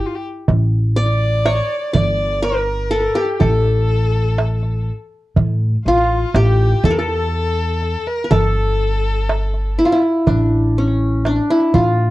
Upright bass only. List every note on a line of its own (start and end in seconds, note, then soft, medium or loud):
0.49 1.59 A1 medium
1.95 3.05 G1 medium
3.41 4.89 A1 loud
5.37 5.74 A2 medium
5.86 6.23 A1 medium
6.34 6.71 A1 medium
6.83 7.94 E2 medium
8.31 9.79 G1 medium
10.27 11.38 A1 medium
11.75 12.10 A2 medium